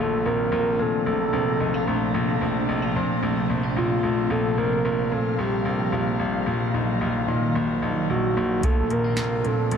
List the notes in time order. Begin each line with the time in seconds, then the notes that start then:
Already playing: A#1 C3 F3 A#3 D4
0.00 A#2 F4 A4
0.26 A#1 C4 A#4
0.52 A#1 F4
0.79 A#2 C4 A4
1.06 A#1 A3 A4
1.33 A#1 C4
1.60 A#1 D#4
1.74 F4
1.87 A#1 A3
2.14 A#1 A#2 C4 F4
2.41 A#1 C4
2.68 A#1 D#4
2.82 F4
2.95 A#2 C4
3.23 A#1 A3
3.49 A#1 A#3
3.63 C4
3.77 A#1 F4
4.03 A#1 A3
4.30 A#1 A#2 A#3 F4 A4 F5
4.58 A#1 C4 A#4
4.85 A#1 F4
5.12 A#2 C4 A4
5.39 A#1 G3 G4
5.65 A#1 C4
5.92 A#1 F4
6.19 A#1 G3
6.46 A#1 A#2 D#3 F#3 F4
6.73 A#1 D#4
7.01 A#1 F4
7.28 A#2 D#4
7.55 A#1 A#3
7.82 A#1 D#4
8.10 A#1 F#4
8.37 A#1 A#3
8.63 A#1 A#2 C3 F3 D4 F4 A4, kick, closed hi-hat
8.90 A#1 A#3 A#4, closed hi-hat
9.04 C4
9.17 A#1 F4, snare, closed hi-hat
9.44 A#2 C4 A4, closed hi-hat
9.71 A#1 A3 A4, closed hi-hat